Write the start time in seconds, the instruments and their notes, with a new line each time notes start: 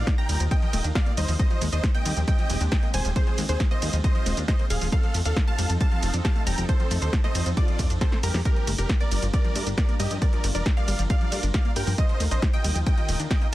Already playing: analog synth pad D#3 D#4 F4 A#4, supersaw synth D5 F5, synth pluck F5
0.07 synth arpeggio sound G4, kick, snare, closed hi-hat, ride, shaker
0.18 synth arpeggio sound A#3, supersaw synth G5 A#5, synth pluck A#5, closed hi-hat
0.29 analog synth bass D#2, synth arpeggio sound G3, open hi-hat, ride, shaker
0.40 analog synth bass D#2, synth arpeggio sound F3, closed hi-hat, shaker
0.51 synth arpeggio sound G3, supersaw synth D#5 G5, synth pluck G5, kick, closed hi-hat, ride, shaker
0.62 synth arpeggio sound F3, closed hi-hat
0.73 analog synth bass D#1, synth arpeggio sound A3, open hi-hat, ride, shaker
0.84 analog synth bass D#2, synth arpeggio sound D4, closed hi-hat, shaker
0.95 synth arpeggio sound G4, supersaw synth D5 F5, synth pluck F5, kick, snare, closed hi-hat, ride, shaker
1.06 synth arpeggio sound A#3, closed hi-hat
1.17 analog synth bass D#2, synth arpeggio sound G3, supersaw synth C5 D#5, synth pluck D#5, open hi-hat, ride, shaker
1.28 analog synth bass D#2, synth arpeggio sound F3, open hi-hat, shaker
1.39 synth arpeggio sound G3, analog synth pad G#3 C4 G4, supersaw synth C5 D#5, synth pluck D#5, kick, ride, shaker
1.51 synth arpeggio sound F3, closed hi-hat
1.62 analog synth bass D#2, synth arpeggio sound G#3, open hi-hat, ride, shaker
1.73 analog synth bass D#2, synth arpeggio sound D4, supersaw synth C5 D#5, synth pluck D#5, closed hi-hat, shaker
1.84 synth arpeggio sound G4, kick, snare, closed hi-hat, ride, shaker
1.95 synth arpeggio sound A#3, supersaw synth D#5 G5, synth pluck G5, closed hi-hat
2.06 analog synth bass D#2, synth arpeggio sound G3, open hi-hat, ride, shaker
2.17 analog synth bass D#2, synth arpeggio sound F3, closed hi-hat, shaker
2.28 synth arpeggio sound G3, supersaw synth D#5 G5, synth pluck G5, kick, closed hi-hat, ride, shaker
2.39 synth arpeggio sound F3, closed hi-hat
2.50 analog synth bass D#1, synth arpeggio sound G#3, open hi-hat, ride, shaker
2.61 analog synth bass D#2, synth arpeggio sound D4, closed hi-hat, shaker
2.72 synth arpeggio sound G4, supersaw synth D#5 G5, synth pluck G5, kick, snare, closed hi-hat, ride, shaker
2.83 synth arpeggio sound A#3, closed hi-hat
2.94 analog synth bass D#1, synth arpeggio sound G3, supersaw synth C5 G#5, synth pluck G#5, open hi-hat, ride, shaker
3.05 analog synth bass D#1, synth arpeggio sound F3, closed hi-hat, shaker
3.16 synth arpeggio sound G3, analog synth pad F4, supersaw synth G#4 C5, synth pluck C5, kick, closed hi-hat, ride, shaker
3.27 synth arpeggio sound F3, closed hi-hat
3.38 analog synth bass D#2, synth arpeggio sound G#3, open hi-hat, ride, shaker
3.49 analog synth bass D#2, synth arpeggio sound D4, supersaw synth G#4 C5, synth pluck C5, closed hi-hat, shaker
3.60 synth arpeggio sound G4, kick, snare, closed hi-hat, ride, shaker
3.71 synth arpeggio sound A#3, supersaw synth C5 D#5, synth pluck D#5, closed hi-hat
3.82 analog synth bass D#2, synth arpeggio sound G3, open hi-hat, ride, shaker
3.93 analog synth bass D#2, synth arpeggio sound F3, closed hi-hat, shaker
4.04 synth arpeggio sound G3, supersaw synth C5 D#5, synth pluck D#5, kick, closed hi-hat, ride, shaker
4.15 synth arpeggio sound F3, closed hi-hat
4.26 analog synth bass D#1, synth arpeggio sound G#3, open hi-hat, ride, shaker
4.37 analog synth bass D#2, synth arpeggio sound D4, closed hi-hat, shaker
4.48 synth arpeggio sound G4, supersaw synth C5 D#5, synth pluck D#5, kick, snare, closed hi-hat, ride, shaker
4.59 synth arpeggio sound A#3, closed hi-hat
4.70 analog synth bass D#1, synth arpeggio sound G3, supersaw synth G#4 F5, synth pluck F5, open hi-hat, ride, shaker
4.81 analog synth bass D#1, synth arpeggio sound F3, open hi-hat, shaker
4.92 analog synth pad F3 C4 D#4 A4, synth arpeggio sound G3, supersaw synth A4 F5, synth pluck F5, kick, closed hi-hat, ride, shaker
5.03 synth arpeggio sound F3, closed hi-hat
5.14 analog synth bass F2, synth arpeggio sound A3, open hi-hat, ride, shaker
5.25 analog synth bass D#2, synth arpeggio sound D4, supersaw synth A4 F5, synth pluck F5, closed hi-hat, shaker
5.37 synth arpeggio sound G4, kick, snare, closed hi-hat, ride, shaker
5.48 synth arpeggio sound A3, supersaw synth F5 A5, synth pluck A5, closed hi-hat
5.59 analog synth bass F2, synth arpeggio sound G3, open hi-hat, ride, shaker
5.70 analog synth bass F2, synth arpeggio sound F3, closed hi-hat, shaker
5.81 synth arpeggio sound G3, supersaw synth F5 A5, synth pluck A5, kick, closed hi-hat, ride, shaker
5.92 synth arpeggio sound F3, closed hi-hat
6.03 analog synth bass F1, synth arpeggio sound A3, open hi-hat, ride, shaker
6.14 analog synth bass F2, synth arpeggio sound D4, closed hi-hat, shaker
6.25 synth arpeggio sound G4, supersaw synth F5 A5, synth pluck A5, kick, snare, closed hi-hat, ride, shaker
6.36 synth arpeggio sound A3, closed hi-hat
6.47 analog synth bass F1, synth arpeggio sound G3, supersaw synth G5 A#5, synth pluck A#5, open hi-hat, ride, shaker
6.58 analog synth bass F1, synth arpeggio sound F3, closed hi-hat, shaker
6.69 synth arpeggio sound G3, supersaw synth A4 C5, synth pluck C5, kick, closed hi-hat, ride, shaker
6.80 synth arpeggio sound F3, closed hi-hat
6.91 analog synth bass F2, synth arpeggio sound A3, open hi-hat, ride, shaker
7.02 analog synth bass D#2, synth arpeggio sound D4, supersaw synth A4 C5, synth pluck C5, closed hi-hat, shaker
7.13 synth arpeggio sound G4, kick, snare, closed hi-hat, ride, shaker
7.24 synth arpeggio sound A3, supersaw synth C5 D#5, synth pluck D#5, snare, closed hi-hat
7.35 analog synth bass F2, synth arpeggio sound G3, open hi-hat, ride, shaker
7.46 analog synth bass F2, synth arpeggio sound F3, closed hi-hat, shaker
7.57 synth arpeggio sound G3, supersaw synth F4 D5, synth pluck D5, kick, closed hi-hat, ride, shaker
7.68 synth arpeggio sound F3, closed hi-hat
7.79 analog synth bass F2, synth arpeggio sound A3, kick, open hi-hat, ride, shaker
7.90 analog synth bass F2, synth arpeggio sound D4, closed hi-hat, shaker
8.01 synth arpeggio sound G4, supersaw synth A4 C5, synth pluck C5, kick, snare, closed hi-hat, ride, shaker
8.12 synth arpeggio sound A3, snare, closed hi-hat
8.23 analog synth bass F2, synth arpeggio sound G3, supersaw synth G4 A#4, synth pluck A#4, open hi-hat, ride, shaker
8.34 analog synth bass F2, synth arpeggio sound F3, snare, open hi-hat, shaker
8.45 analog synth pad G3 D4 F4 A#4, synth arpeggio sound G3, supersaw synth G4 A#4, synth pluck A#4, kick, closed hi-hat, ride, shaker
8.56 synth arpeggio sound F3, closed hi-hat
8.67 analog synth bass G1, synth arpeggio sound A3, open hi-hat, ride, shaker
8.78 analog synth bass F1, synth arpeggio sound D4, supersaw synth G4 A#4, synth pluck A#4, closed hi-hat, shaker
8.89 synth arpeggio sound G4, kick, snare, closed hi-hat, ride, shaker
9.00 synth arpeggio sound A#3, supersaw synth A#4 D5, synth pluck D5, closed hi-hat
9.11 analog synth bass G1, synth arpeggio sound G3, open hi-hat, ride, shaker
9.23 analog synth bass G1, synth arpeggio sound F3, closed hi-hat, shaker
9.33 synth arpeggio sound G3, supersaw synth A#4 D5, synth pluck D5, kick, closed hi-hat, ride, shaker
9.45 synth arpeggio sound F3, closed hi-hat
9.56 analog synth bass G2, synth arpeggio sound A3, open hi-hat, ride, shaker
9.67 analog synth bass G1, synth arpeggio sound D4, closed hi-hat, shaker
9.78 synth arpeggio sound G4, supersaw synth A#4 D5, synth pluck D5, kick, snare, closed hi-hat, ride, shaker
9.89 synth arpeggio sound A#3, closed hi-hat
10.00 analog synth bass G2, synth arpeggio sound G3, supersaw synth G4 D#5, synth pluck D#5, open hi-hat, ride, shaker
10.11 analog synth bass G2, synth arpeggio sound F3, closed hi-hat, shaker
10.22 synth arpeggio sound G3, supersaw synth A#4 D5, synth pluck D5, kick, closed hi-hat, ride, shaker
10.33 synth arpeggio sound F3, closed hi-hat
10.44 analog synth bass G1, synth arpeggio sound A3, open hi-hat, ride, shaker
10.55 analog synth bass F1, synth arpeggio sound D4, supersaw synth A#4 D5, synth pluck D5, closed hi-hat, shaker
10.66 synth arpeggio sound G4, kick, snare, closed hi-hat, ride, shaker
10.77 synth arpeggio sound A#3, supersaw synth D5 F5, synth pluck F5, closed hi-hat
10.88 analog synth bass G1, synth arpeggio sound G3, open hi-hat, ride, shaker
10.99 analog synth bass G1, synth arpeggio sound F3, closed hi-hat, shaker
11.10 synth arpeggio sound G3, supersaw synth D5 F5, synth pluck F5, kick, closed hi-hat, ride, shaker
11.21 synth arpeggio sound F3, closed hi-hat
11.32 analog synth bass G2, synth arpeggio sound A3, open hi-hat, ride, shaker
11.43 analog synth bass G1, synth arpeggio sound D4, closed hi-hat, shaker
11.54 synth arpeggio sound G4, supersaw synth D5 F5, synth pluck F5, kick, snare, closed hi-hat, ride, shaker
11.65 synth arpeggio sound A#3, closed hi-hat
11.76 analog synth bass G2, synth arpeggio sound G3, supersaw synth A#4 G5, synth pluck G5, open hi-hat, ride, shaker
11.87 analog synth bass G2, synth arpeggio sound F3, open hi-hat, shaker
11.98 analog synth pad D#3 D#4, synth arpeggio sound G3, supersaw synth C5 D#5, synth pluck D#5, kick, closed hi-hat, ride, shaker
12.09 synth arpeggio sound F3, closed hi-hat
12.20 analog synth bass D#2, synth arpeggio sound A3, open hi-hat, ride, shaker
12.31 analog synth bass A#1, synth arpeggio sound D4, supersaw synth C5 D#5, synth pluck D#5, closed hi-hat, shaker
12.42 synth arpeggio sound G4, kick, snare, closed hi-hat, ride, shaker
12.53 synth arpeggio sound A#3, supersaw synth D#5 G5, synth pluck G5, closed hi-hat
12.64 analog synth bass D#2, synth arpeggio sound G3, open hi-hat, ride, shaker
12.75 analog synth bass D#2, synth arpeggio sound F3, closed hi-hat, shaker
12.86 synth arpeggio sound G3, supersaw synth D#5 G5, synth pluck G5, kick, closed hi-hat, ride, shaker
12.98 synth arpeggio sound F3, closed hi-hat
13.09 analog synth bass D#1, synth arpeggio sound A3, open hi-hat, ride, shaker
13.20 analog synth bass D#2, synth arpeggio sound D4, closed hi-hat, shaker
13.31 synth arpeggio sound G4, supersaw synth D#5 G5, synth pluck G5, kick, snare, closed hi-hat, ride, shaker
13.42 synth arpeggio sound A#3, closed hi-hat